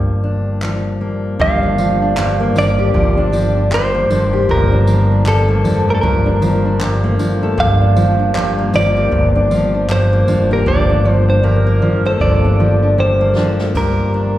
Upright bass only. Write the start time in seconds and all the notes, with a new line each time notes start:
Already playing: G1
1.40 G1
2.56 G1
2.95 G1
4.11 F1
4.49 G1
5.65 F2
6.04 G1
7.58 G1
8.74 G1
9.12 G1
10.28 F1
10.67 G1
11.83 F2
12.21 G1
13.75 G1